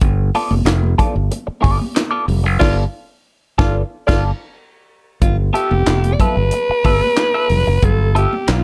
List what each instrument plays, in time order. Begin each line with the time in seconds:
0.01 fingered electric bass G1, kick, closed hi-hat, muted conga
0.34 clean electric guitar B3 F4 A4 D5, open hi-hat, muted conga
0.51 fingered electric bass F1, high conga
0.65 fingered electric bass F1, muted clean electric guitar stroke, snare, clap, closed hi-hat
0.84 high conga
0.98 clean electric guitar B3 F4 A4 D5, kick, closed hi-hat, low conga
1.16 fingered electric bass G1, muted clean electric guitar stroke
1.31 muted clean electric guitar stroke, closed hi-hat, muted conga
1.47 muted clean electric guitar stroke, muted fingered electric bass stroke
1.61 fingered electric bass G1, clean electric guitar B3 F4 A4 D5, kick, open hi-hat
1.65 muted conga
1.79 muted clean electric guitar stroke, high conga
1.95 muted clean electric guitar stroke, snare, clap, closed hi-hat, muted conga
2.11 clean electric guitar B3 F4 A4 D5
2.28 fingered electric bass F1, open hi-hat, low conga
2.44 fingered electric bass F#1, muted clean electric guitar stroke
2.59 fingered electric bass G1, clean electric guitar B3 F4 A4 D5, tenor saxophone F4, kick, snare, crash
3.58 fingered electric bass G1, clean electric guitar B3 F4 A4 D5, tenor saxophone F4, kick, snare
4.07 fingered electric bass G1, clean electric guitar B3 F4 A4 D5, tenor saxophone F4, kick, snare, crash
5.22 fingered electric bass G1, alto saxophone F4, kick, closed hi-hat, low conga
5.53 clean electric guitar B3 F4 A4 E5, alto saxophone G4, closed hi-hat
5.71 fingered electric bass F1, high conga
5.86 fingered electric bass F1, muted clean electric guitar stroke, snare, clap, closed hi-hat
6.04 closed hi-hat, high conga
6.14 alto saxophone D5
6.20 clean electric guitar B3 F4 A4 E5, alto saxophone B4, kick, closed hi-hat, low conga
6.37 fingered electric bass G1
6.51 muted clean electric guitar stroke, closed hi-hat, muted conga
6.69 muted fingered electric bass stroke, muted clean electric guitar stroke
6.84 fingered electric bass G1, clean electric guitar B3 F4 A4 E5, kick, open hi-hat, muted conga, high conga
7.02 muted clean electric guitar stroke, high conga
7.16 muted clean electric guitar stroke, snare, clap, closed hi-hat, muted conga
7.34 clean electric guitar B3 F4 A4 E5
7.49 fingered electric bass F1, muted clean electric guitar stroke, open hi-hat, low conga
7.67 fingered electric bass F#1, muted clean electric guitar stroke
7.82 fingered electric bass G1, alto saxophone A4, kick, closed hi-hat, muted conga, low conga
8.15 clean electric guitar B3 F4 A4 E5, alto saxophone G4, closed hi-hat
8.33 high conga
8.47 fingered electric bass B1, alto saxophone F4, muted clean electric guitar stroke, snare, clap, closed hi-hat